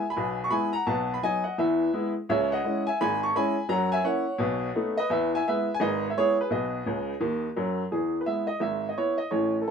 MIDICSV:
0, 0, Header, 1, 2, 480
1, 0, Start_track
1, 0, Key_signature, 4, "major"
1, 0, Tempo, 352113
1, 1181, Time_signature, 4, 2, 24, 8
1, 13231, End_track
2, 0, Start_track
2, 0, Title_t, "Upright piano"
2, 0, Program_c, 0, 0
2, 139, Note_on_c, 0, 83, 86
2, 157, Note_on_c, 0, 80, 64
2, 223, Note_on_c, 0, 47, 71
2, 226, Note_on_c, 0, 35, 73
2, 545, Note_off_c, 0, 83, 0
2, 593, Note_off_c, 0, 80, 0
2, 601, Note_on_c, 0, 85, 82
2, 630, Note_off_c, 0, 47, 0
2, 632, Note_off_c, 0, 35, 0
2, 680, Note_on_c, 0, 56, 50
2, 688, Note_on_c, 0, 83, 94
2, 692, Note_on_c, 0, 59, 54
2, 694, Note_off_c, 0, 85, 0
2, 704, Note_on_c, 0, 64, 57
2, 707, Note_on_c, 0, 80, 75
2, 950, Note_off_c, 0, 56, 0
2, 955, Note_off_c, 0, 83, 0
2, 958, Note_off_c, 0, 59, 0
2, 967, Note_off_c, 0, 64, 0
2, 990, Note_off_c, 0, 80, 0
2, 993, Note_on_c, 0, 82, 97
2, 1019, Note_on_c, 0, 78, 68
2, 1146, Note_off_c, 0, 82, 0
2, 1175, Note_off_c, 0, 78, 0
2, 1178, Note_on_c, 0, 35, 72
2, 1182, Note_on_c, 0, 81, 84
2, 1184, Note_on_c, 0, 47, 70
2, 1218, Note_on_c, 0, 78, 62
2, 1516, Note_off_c, 0, 81, 0
2, 1552, Note_on_c, 0, 83, 81
2, 1566, Note_off_c, 0, 78, 0
2, 1587, Note_off_c, 0, 35, 0
2, 1590, Note_off_c, 0, 47, 0
2, 1650, Note_off_c, 0, 83, 0
2, 1667, Note_on_c, 0, 59, 39
2, 1678, Note_on_c, 0, 54, 47
2, 1683, Note_on_c, 0, 80, 98
2, 1687, Note_on_c, 0, 75, 72
2, 1689, Note_on_c, 0, 63, 53
2, 1929, Note_off_c, 0, 59, 0
2, 1934, Note_off_c, 0, 80, 0
2, 1937, Note_off_c, 0, 54, 0
2, 1945, Note_off_c, 0, 63, 0
2, 1952, Note_off_c, 0, 75, 0
2, 1961, Note_on_c, 0, 78, 74
2, 1972, Note_on_c, 0, 75, 56
2, 2111, Note_off_c, 0, 78, 0
2, 2131, Note_off_c, 0, 75, 0
2, 2152, Note_on_c, 0, 40, 68
2, 2155, Note_on_c, 0, 52, 77
2, 2163, Note_on_c, 0, 76, 80
2, 2165, Note_on_c, 0, 71, 59
2, 2555, Note_off_c, 0, 40, 0
2, 2557, Note_off_c, 0, 52, 0
2, 2633, Note_on_c, 0, 59, 53
2, 2638, Note_on_c, 0, 56, 52
2, 2639, Note_on_c, 0, 64, 61
2, 2823, Note_off_c, 0, 76, 0
2, 2886, Note_off_c, 0, 71, 0
2, 2894, Note_off_c, 0, 59, 0
2, 2897, Note_off_c, 0, 56, 0
2, 2898, Note_off_c, 0, 64, 0
2, 3125, Note_on_c, 0, 37, 78
2, 3131, Note_on_c, 0, 76, 85
2, 3133, Note_on_c, 0, 49, 74
2, 3149, Note_on_c, 0, 73, 66
2, 3379, Note_off_c, 0, 76, 0
2, 3412, Note_off_c, 0, 73, 0
2, 3436, Note_on_c, 0, 78, 84
2, 3450, Note_on_c, 0, 75, 73
2, 3523, Note_off_c, 0, 37, 0
2, 3527, Note_off_c, 0, 49, 0
2, 3606, Note_on_c, 0, 56, 50
2, 3616, Note_on_c, 0, 64, 47
2, 3628, Note_on_c, 0, 61, 47
2, 3832, Note_off_c, 0, 78, 0
2, 3863, Note_off_c, 0, 56, 0
2, 3871, Note_off_c, 0, 64, 0
2, 3876, Note_off_c, 0, 75, 0
2, 3879, Note_off_c, 0, 61, 0
2, 3909, Note_on_c, 0, 80, 91
2, 3934, Note_on_c, 0, 76, 67
2, 4047, Note_off_c, 0, 80, 0
2, 4074, Note_off_c, 0, 76, 0
2, 4100, Note_on_c, 0, 83, 107
2, 4103, Note_on_c, 0, 32, 76
2, 4107, Note_on_c, 0, 44, 75
2, 4116, Note_on_c, 0, 80, 83
2, 4344, Note_off_c, 0, 83, 0
2, 4376, Note_off_c, 0, 80, 0
2, 4407, Note_on_c, 0, 85, 90
2, 4415, Note_on_c, 0, 81, 58
2, 4493, Note_off_c, 0, 32, 0
2, 4495, Note_off_c, 0, 44, 0
2, 4538, Note_off_c, 0, 85, 0
2, 4554, Note_off_c, 0, 81, 0
2, 4571, Note_on_c, 0, 56, 58
2, 4574, Note_on_c, 0, 61, 58
2, 4581, Note_on_c, 0, 83, 101
2, 4583, Note_on_c, 0, 64, 61
2, 4591, Note_on_c, 0, 80, 82
2, 4827, Note_off_c, 0, 56, 0
2, 4828, Note_off_c, 0, 61, 0
2, 4835, Note_off_c, 0, 64, 0
2, 4972, Note_off_c, 0, 83, 0
2, 5014, Note_off_c, 0, 80, 0
2, 5025, Note_on_c, 0, 42, 71
2, 5027, Note_on_c, 0, 54, 82
2, 5032, Note_on_c, 0, 82, 99
2, 5065, Note_on_c, 0, 78, 74
2, 5288, Note_off_c, 0, 82, 0
2, 5329, Note_off_c, 0, 78, 0
2, 5343, Note_on_c, 0, 80, 99
2, 5360, Note_on_c, 0, 76, 78
2, 5431, Note_off_c, 0, 42, 0
2, 5432, Note_off_c, 0, 54, 0
2, 5483, Note_off_c, 0, 80, 0
2, 5505, Note_off_c, 0, 76, 0
2, 5509, Note_on_c, 0, 58, 45
2, 5511, Note_on_c, 0, 61, 51
2, 5516, Note_on_c, 0, 78, 88
2, 5517, Note_on_c, 0, 64, 59
2, 5518, Note_on_c, 0, 73, 67
2, 5770, Note_off_c, 0, 58, 0
2, 5772, Note_off_c, 0, 61, 0
2, 5776, Note_off_c, 0, 64, 0
2, 5976, Note_on_c, 0, 47, 89
2, 5994, Note_on_c, 0, 35, 77
2, 6386, Note_off_c, 0, 47, 0
2, 6396, Note_off_c, 0, 35, 0
2, 6478, Note_on_c, 0, 57, 61
2, 6482, Note_on_c, 0, 59, 56
2, 6490, Note_on_c, 0, 63, 62
2, 6586, Note_off_c, 0, 78, 0
2, 6721, Note_off_c, 0, 73, 0
2, 6737, Note_off_c, 0, 57, 0
2, 6740, Note_off_c, 0, 59, 0
2, 6745, Note_off_c, 0, 63, 0
2, 6781, Note_on_c, 0, 75, 99
2, 6811, Note_on_c, 0, 71, 73
2, 6922, Note_off_c, 0, 75, 0
2, 6948, Note_on_c, 0, 40, 87
2, 6951, Note_off_c, 0, 71, 0
2, 6954, Note_on_c, 0, 52, 78
2, 6967, Note_on_c, 0, 76, 86
2, 6974, Note_on_c, 0, 71, 65
2, 7216, Note_off_c, 0, 76, 0
2, 7243, Note_off_c, 0, 71, 0
2, 7293, Note_on_c, 0, 80, 92
2, 7304, Note_on_c, 0, 76, 73
2, 7352, Note_off_c, 0, 40, 0
2, 7356, Note_off_c, 0, 52, 0
2, 7420, Note_off_c, 0, 80, 0
2, 7438, Note_off_c, 0, 76, 0
2, 7467, Note_on_c, 0, 76, 89
2, 7470, Note_on_c, 0, 56, 48
2, 7479, Note_on_c, 0, 59, 50
2, 7480, Note_on_c, 0, 64, 46
2, 7489, Note_on_c, 0, 71, 60
2, 7720, Note_off_c, 0, 56, 0
2, 7726, Note_off_c, 0, 59, 0
2, 7727, Note_off_c, 0, 64, 0
2, 7781, Note_off_c, 0, 76, 0
2, 7822, Note_off_c, 0, 71, 0
2, 7831, Note_on_c, 0, 80, 94
2, 7906, Note_on_c, 0, 32, 82
2, 7908, Note_off_c, 0, 80, 0
2, 7913, Note_on_c, 0, 44, 82
2, 7922, Note_on_c, 0, 75, 91
2, 7935, Note_on_c, 0, 71, 71
2, 8246, Note_off_c, 0, 75, 0
2, 8284, Note_off_c, 0, 71, 0
2, 8311, Note_off_c, 0, 32, 0
2, 8315, Note_off_c, 0, 44, 0
2, 8317, Note_on_c, 0, 76, 65
2, 8391, Note_off_c, 0, 76, 0
2, 8406, Note_on_c, 0, 56, 44
2, 8421, Note_on_c, 0, 59, 52
2, 8422, Note_on_c, 0, 73, 104
2, 8428, Note_on_c, 0, 64, 60
2, 8431, Note_on_c, 0, 68, 78
2, 8662, Note_off_c, 0, 56, 0
2, 8664, Note_off_c, 0, 73, 0
2, 8673, Note_off_c, 0, 59, 0
2, 8678, Note_off_c, 0, 64, 0
2, 8692, Note_off_c, 0, 68, 0
2, 8734, Note_on_c, 0, 71, 74
2, 8754, Note_on_c, 0, 68, 50
2, 8858, Note_off_c, 0, 71, 0
2, 8865, Note_on_c, 0, 35, 67
2, 8870, Note_on_c, 0, 47, 76
2, 8878, Note_on_c, 0, 71, 53
2, 8882, Note_on_c, 0, 75, 71
2, 8883, Note_off_c, 0, 68, 0
2, 9270, Note_off_c, 0, 35, 0
2, 9273, Note_off_c, 0, 47, 0
2, 9353, Note_on_c, 0, 49, 61
2, 9360, Note_on_c, 0, 37, 68
2, 9707, Note_off_c, 0, 49, 0
2, 9712, Note_off_c, 0, 37, 0
2, 9819, Note_on_c, 0, 51, 71
2, 9824, Note_on_c, 0, 39, 72
2, 10095, Note_off_c, 0, 75, 0
2, 10178, Note_off_c, 0, 51, 0
2, 10181, Note_off_c, 0, 39, 0
2, 10253, Note_off_c, 0, 71, 0
2, 10311, Note_on_c, 0, 54, 67
2, 10317, Note_on_c, 0, 42, 71
2, 10666, Note_off_c, 0, 54, 0
2, 10669, Note_off_c, 0, 42, 0
2, 10786, Note_on_c, 0, 52, 48
2, 10791, Note_on_c, 0, 40, 58
2, 10796, Note_on_c, 0, 68, 60
2, 11122, Note_off_c, 0, 68, 0
2, 11188, Note_on_c, 0, 71, 56
2, 11190, Note_off_c, 0, 52, 0
2, 11193, Note_off_c, 0, 40, 0
2, 11261, Note_on_c, 0, 59, 40
2, 11264, Note_on_c, 0, 76, 76
2, 11266, Note_off_c, 0, 71, 0
2, 11270, Note_on_c, 0, 56, 38
2, 11270, Note_on_c, 0, 64, 39
2, 11522, Note_off_c, 0, 76, 0
2, 11524, Note_off_c, 0, 59, 0
2, 11530, Note_off_c, 0, 56, 0
2, 11531, Note_off_c, 0, 64, 0
2, 11547, Note_on_c, 0, 75, 74
2, 11702, Note_off_c, 0, 75, 0
2, 11726, Note_on_c, 0, 44, 62
2, 11727, Note_on_c, 0, 32, 60
2, 11741, Note_on_c, 0, 76, 73
2, 12074, Note_off_c, 0, 76, 0
2, 12117, Note_on_c, 0, 75, 63
2, 12139, Note_off_c, 0, 32, 0
2, 12139, Note_off_c, 0, 44, 0
2, 12211, Note_off_c, 0, 75, 0
2, 12233, Note_on_c, 0, 64, 48
2, 12237, Note_on_c, 0, 73, 79
2, 12240, Note_on_c, 0, 59, 41
2, 12490, Note_off_c, 0, 73, 0
2, 12493, Note_off_c, 0, 64, 0
2, 12498, Note_off_c, 0, 59, 0
2, 12511, Note_on_c, 0, 75, 74
2, 12664, Note_off_c, 0, 75, 0
2, 12688, Note_on_c, 0, 73, 69
2, 12692, Note_on_c, 0, 45, 70
2, 12699, Note_on_c, 0, 33, 55
2, 13026, Note_off_c, 0, 73, 0
2, 13102, Note_off_c, 0, 45, 0
2, 13106, Note_off_c, 0, 33, 0
2, 13109, Note_on_c, 0, 69, 52
2, 13171, Note_off_c, 0, 69, 0
2, 13231, End_track
0, 0, End_of_file